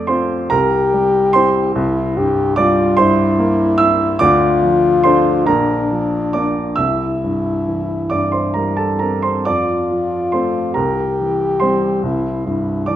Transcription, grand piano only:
0.00 0.47 F2 medium
0.00 0.34 A3 soft
0.00 0.54 D5 medium
0.00 0.53 D6 medium
0.07 0.47 C4 soft
0.07 0.48 F4 soft
0.07 0.48 C5 medium
0.07 0.51 C6 medium
0.50 1.72 C2 medium
0.50 1.31 A#4 medium
0.50 1.34 A#5 medium
0.94 1.60 G3 soft
1.33 1.72 C4 soft
1.33 1.72 E4 soft
1.33 2.53 C5 medium
1.33 2.56 C6 medium
1.75 4.17 C2 medium
2.17 2.82 G2 soft
2.56 3.24 G3 soft
2.56 2.96 D5 medium
2.56 2.98 D6 medium
2.97 3.64 G2 soft
2.97 3.76 C5 medium
2.97 3.79 C6 medium
3.39 4.04 A#3 soft
3.78 4.21 E4 soft
3.78 4.18 E5 medium
3.78 4.20 E6 medium
4.19 5.43 D2 medium
4.19 5.00 D5 medium
4.19 5.03 D6 loud
4.63 5.30 F3 soft
5.04 5.44 A3 soft
5.04 5.44 D4 soft
5.04 5.44 C5 medium
5.04 5.47 C6 medium
5.46 6.75 A#1 medium
5.46 6.30 A#4 medium
5.46 6.34 A#5 medium
5.91 6.61 F3 soft
6.33 6.75 A#3 soft
6.33 6.75 D4 soft
6.33 6.75 D5 soft
6.33 6.78 D6 medium
6.76 9.42 C2 soft
6.76 8.07 E5 medium
6.76 8.10 E6 medium
7.24 7.94 G2 soft
7.68 8.38 E3 soft
8.10 8.82 G2 soft
8.10 8.32 D5 medium
8.10 8.32 D6 medium
8.32 8.54 C5 soft
8.32 8.55 C6 soft
8.54 9.28 G3 soft
8.54 8.76 A#4 soft
8.54 8.77 A#5 medium
8.77 8.99 A4 soft
8.77 9.00 A5 medium
8.99 9.46 C4 soft
8.99 9.22 A#4 soft
8.99 9.23 A#5 medium
9.22 9.44 C5 soft
9.22 9.45 C6 medium
9.45 10.73 F2 soft
9.45 10.30 D5 medium
9.45 10.33 D6 medium
9.91 10.60 F3 soft
10.32 10.72 A3 soft
10.32 10.73 C4 soft
10.32 10.73 C5 soft
10.32 10.75 C6 medium
10.74 12.00 C2 soft
10.74 11.57 A#4 soft
10.74 11.60 A#5 medium
11.20 11.87 E3 soft
11.60 12.00 G3 soft
11.60 12.00 C4 soft
11.60 12.84 C5 soft
11.60 12.88 C6 medium
12.03 12.96 C2 soft
12.46 12.96 G2 soft
12.86 12.96 E3 soft
12.86 12.96 D5 soft
12.86 12.96 D6 medium

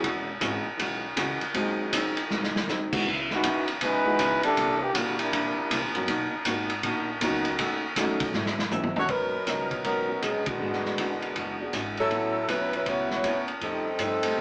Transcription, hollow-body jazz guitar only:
0.03 0.29 E3 medium
0.03 0.29 G#3 medium
0.03 0.30 C#4 medium
0.03 0.30 F#4 medium
0.41 0.67 E3 medium
0.41 0.67 G#3 medium
0.41 0.67 C#4 medium
0.41 0.68 F#4 medium
0.77 1.04 E3 medium
0.77 1.05 G#3 medium
0.77 1.05 C#4 soft
0.77 1.06 F#4 medium
1.16 1.42 E3 medium
1.16 1.43 G#3 medium
1.16 1.43 C#4 medium
1.16 1.43 F#4 medium
1.54 1.80 G#2 soft
1.54 1.81 F#3 medium
1.54 1.81 C4 medium
1.54 1.82 D#4 medium
1.93 2.19 G#2 medium
1.93 2.19 F#3 medium
1.93 2.20 C4 medium
1.93 2.20 D#4 medium
2.30 2.56 G#2 medium
2.30 2.57 F#3 soft
2.30 2.57 C4 medium
2.30 2.58 D#4 soft
2.69 2.94 G#2 medium
2.69 2.95 F#3 medium
2.69 2.95 C4 medium
2.69 2.95 D#4 medium
3.06 3.32 C#3 medium
3.06 3.32 F#3 medium
3.06 3.33 B3 medium
3.06 3.33 E4 medium
3.45 3.70 C#3 medium
3.45 3.70 F#3 medium
3.45 3.71 B3 medium
3.45 3.71 E4 medium
3.81 4.07 C#3 soft
3.81 4.08 F#3 soft
3.81 4.08 B3 soft
3.81 4.09 E4 soft
4.20 4.45 C#3 medium
4.20 4.45 F#3 medium
4.20 4.46 B3 medium
4.20 4.46 E4 medium
4.58 4.83 C3 soft
4.58 4.83 E3 medium
4.58 4.84 A#3 soft
4.58 4.84 D4 soft
4.96 5.21 C3 medium
4.96 5.21 E3 medium
4.96 5.22 A#3 medium
4.96 5.22 D4 medium
5.33 5.58 C3 soft
5.33 5.59 E3 soft
5.33 5.59 A#3 soft
5.33 5.60 D4 medium
5.70 5.96 C3 medium
5.70 5.96 E3 medium
5.70 5.96 A#3 medium
5.70 5.97 D4 medium
6.07 6.33 B2 medium
6.07 6.34 A#3 medium
6.07 6.34 D#4 medium
6.07 6.35 F#4 medium
6.45 6.71 B2 medium
6.45 6.71 A#3 medium
6.45 6.72 D#4 medium
6.45 6.72 F#4 medium
6.83 7.09 B2 soft
6.83 7.09 A#3 medium
6.83 7.10 D#4 medium
6.83 7.10 F#4 medium
7.21 7.47 B2 medium
7.21 7.47 A#3 medium
7.21 7.48 D#4 medium
7.21 7.48 F#4 medium
7.58 7.84 D#3 medium
7.58 7.85 A3 soft
7.58 7.85 C#4 medium
7.58 7.85 F#4 medium
7.97 8.22 D#3 medium
7.97 8.23 A3 medium
7.97 8.23 C#4 medium
7.97 8.23 F#4 medium
8.34 8.60 G#2 soft
8.34 8.60 F#3 medium
8.34 8.61 C4 medium
8.34 8.61 E4 medium
8.71 8.97 G#2 medium
8.71 8.97 F#3 medium
8.71 8.98 C4 medium
8.71 8.98 E4 medium
9.08 9.34 G#2 soft
9.08 9.35 F#3 soft
9.08 9.35 B3 soft
9.08 9.36 C#4 soft
9.46 9.72 G#2 soft
9.46 9.73 F#3 soft
9.46 9.73 B3 medium
9.46 9.74 C#4 medium
9.84 10.10 G#2 soft
9.84 10.11 F#3 soft
9.84 10.11 B3 soft
9.84 10.11 C#4 soft
10.22 10.48 G#2 soft
10.22 10.48 F#3 medium
10.22 10.49 B3 soft
10.22 10.49 C#4 medium
10.60 10.86 E3 soft
10.60 10.86 G#3 soft
10.60 10.87 D4 soft
10.60 10.87 F#4 soft
10.98 11.23 E3 medium
10.98 11.24 G#3 medium
10.98 11.24 D4 medium
10.98 11.25 F#4 medium
11.35 11.61 E3 soft
11.35 11.61 G#3 soft
11.35 11.62 D4 soft
11.35 11.62 F#4 soft
11.74 11.99 E3 medium
11.74 11.99 G#3 medium
11.74 12.00 D4 medium
11.74 12.00 F#4 medium
12.11 12.36 A2 soft
12.11 12.37 F#3 soft
12.11 12.37 B3 soft
12.11 12.38 C#4 soft
12.49 12.74 A2 medium
12.49 12.75 F#3 medium
12.49 12.75 B3 soft
12.49 12.75 C#4 medium
12.86 13.12 A2 soft
12.86 13.12 F#3 soft
12.86 13.13 B3 soft
12.86 13.13 C#4 soft
13.24 13.50 A2 medium
13.24 13.50 F#3 soft
13.24 13.50 B3 medium
13.24 13.50 C#4 medium
13.62 13.88 F3 soft
13.62 13.88 A3 soft
13.62 13.89 D#4 soft
13.62 13.89 G4 soft
14.00 14.25 F3 medium
14.00 14.26 A3 medium
14.00 14.26 D#4 medium
14.00 14.26 G4 medium
14.36 14.41 F3 soft
14.36 14.41 A3 soft

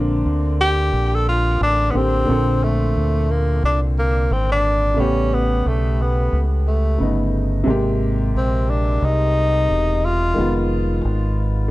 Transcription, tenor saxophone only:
0.61 1.16 G4 loud
1.15 1.28 A4 loud
1.29 1.59 F4 loud
1.63 1.92 D4 loud
1.91 1.98 B3 medium
1.96 2.65 C4 loud
2.63 3.32 A3 medium
3.31 3.64 A#3 loud
3.65 3.80 D4 medium
3.99 4.34 A#3 loud
4.32 4.51 C4 medium
4.52 5.01 D4 loud
5.00 5.35 C#4 loud
5.34 5.69 B3 medium
5.67 6.03 A3 medium
6.01 6.42 B3 medium
6.67 7.30 A3 medium
8.37 8.72 C4 medium
8.70 9.06 D4 medium
9.05 10.07 D#4 loud
10.05 10.72 F4 loud

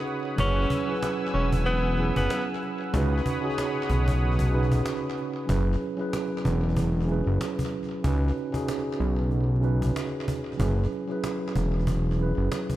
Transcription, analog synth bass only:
0.38 0.66 F#1 loud
1.34 2.12 E1 loud
2.16 2.28 F#1 medium
2.94 3.21 C#2 loud
3.90 4.81 B1 loud
5.49 5.76 F#1 loud
6.45 7.23 E1 loud
7.26 7.38 F#1 medium
8.04 8.32 C#2 loud
9.00 9.92 B1 medium
10.59 10.87 F#1 loud
11.56 12.33 E1 loud
12.37 12.49 F#1 medium

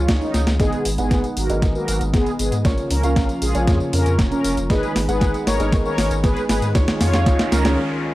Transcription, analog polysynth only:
0.00 0.10 F4 loud
0.21 0.48 D#4 loud
0.60 0.87 B3 medium
0.60 0.87 G#4 loud
0.98 1.25 B3 medium
0.98 1.25 G#4 medium
1.37 1.64 F#4 medium
1.37 1.64 A#4 medium
1.75 2.02 F#4 medium
1.75 2.02 A#4 loud
2.13 2.32 B3 medium
2.13 2.32 G#4 medium
2.39 2.57 B3 medium
2.39 2.57 G#4 medium
2.91 3.27 C#4 medium
2.91 3.27 A#4 medium
3.42 3.78 F4 medium
3.42 3.78 G#4 loud
3.93 4.20 C#4 medium
3.93 4.20 A#4 medium
4.31 4.59 C#4 medium
4.31 4.59 A#4 medium
4.70 4.97 G#4 medium
4.70 4.97 B4 loud
5.08 5.36 G#4 medium
5.08 5.36 B4 medium
5.47 5.74 A#4 medium
5.47 5.74 C#5 loud
5.85 6.13 A#4 medium
5.85 6.13 C#5 loud
6.24 6.42 G#4 medium
6.24 6.42 B4 medium
6.50 6.68 G#4 medium
6.50 6.68 B4 medium
7.01 7.37 F4 medium
7.01 7.37 C#5 loud
7.52 7.78 C#4 medium
7.52 7.78 A#4 loud

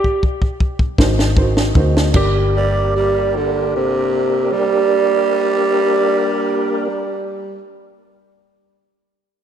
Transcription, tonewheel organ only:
1.00 2.14 C4 medium
1.00 2.14 D#4 medium
1.00 2.14 F#4 medium
1.00 2.15 G#4 medium
2.16 6.88 A#3 medium
2.16 6.87 D4 medium
2.16 6.88 G4 medium
2.16 6.87 A#4 medium

